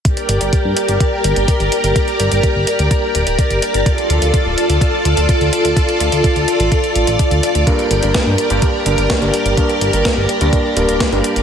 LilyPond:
<<
  \new Staff \with { instrumentName = "String machine" } { \time 4/4 \key g \minor \tempo 4 = 126 << { d''1~ | d''1~ | d''1~ | d''1~ |
d''1~ | d''1 | } \\ { <g' bes'>1~ | <g' bes'>1 | <f' a'>1~ | <f' a'>1 |
<g' bes'>1~ | <g' bes'>1 | } >> }
  \new Staff \with { instrumentName = "Electric grand piano" } { \time 4/4 \key g \minor r1 | r1 | r1 | r1 |
<g, g bes d' bes'>8. <g, g bes d' bes'>4 <g, g bes d' bes'>8. <g, g bes d' bes'>8. <g, g bes d' bes'>8. | <g, g bes d' bes'>8. <g, g bes d' bes'>4 <g, g bes d' bes'>8. <g, g bes d' bes'>8. <g, g bes d' bes'>8. | }
  \new Staff \with { instrumentName = "Analog synth bass" } { \clef bass \time 4/4 \key g \minor r8 g,,16 g,,16 r16 g,16 r16 g,,16 r8 g,,16 g,,16 r16 g,,16 r16 g,,16 | r8 g,,16 g,,16 r16 g,,16 r16 d,16 r8 d,,16 d,,16 r16 g,,16 r16 g,,16 | r8 d,16 d,16 r16 d,,16 r16 d,16 r8 d,16 d,16 r16 d,16 r16 d,16 | r8 d,16 d,16 r16 d,16 r16 a,,16 r8 a,,16 a,,16 r16 d,16 r16 d,16 |
r8 g,,16 g,,16 r16 g,16 r16 g,,16 r8 g,,16 g,,16 r16 g,,16 r16 g,,16 | r8 g,,16 g,,16 r16 g,,16 r16 d,16 r8 d,,16 d,,16 r16 g,,16 r16 g,,16 | }
  \new DrumStaff \with { instrumentName = "Drums" } \drummode { \time 4/4 <hh bd>16 hh16 hh16 hh16 <hh bd>8 hh16 hh16 <hh bd>8 hh16 hh16 <hh bd>16 hh16 hh16 hh16 | <hh bd>16 hh16 hh16 hh16 <hh bd>8 hh16 hh16 <hh bd>8 hh16 hh16 <hh bd>16 hh16 hh16 hh16 | <hh bd>16 hh16 hh16 hh16 <hh bd>8 hh16 hh16 <hh bd>8 hh16 hh16 <hh bd>16 hh16 hh16 hh16 | <hh bd>16 hh16 hh16 hh16 <hh bd>16 hh16 hh16 hh16 <hh bd>16 hh16 hh16 hh16 <hh bd>16 hh16 hh16 hh16 |
<hh bd>16 hh16 hh16 hh16 <hh bd sn>8 hh16 hh16 <hh bd>8 hh16 hh16 <hh bd sn>16 hh16 hh16 hh16 | <hh bd>16 hh16 hh16 hh16 <hh bd sn>8 hh16 hh16 <hh bd>8 hh16 hh16 <hh bd sn>16 hh16 hh16 hh16 | }
>>